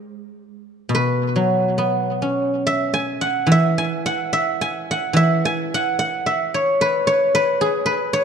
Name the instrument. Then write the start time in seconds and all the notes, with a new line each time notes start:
guzheng
Already playing: G#3 G#4 B4 C#5
0.89 B2
0.95 B4
1.36 F#3
1.78 B3
2.22 C#4
2.67 E5
2.94 G#5
3.21 F#5
3.47 E3
3.52 E5
3.78 G#5
4.06 F#5
4.33 E5
4.61 G#5
4.91 F#5
5.13 E3 E5
5.45 G#5
5.74 F#5
5.99 F#5
6.26 E5
6.54 C#5
6.81 B4
7.07 C#5
7.35 B4
7.61 G#4
7.86 B4
8.13 C#5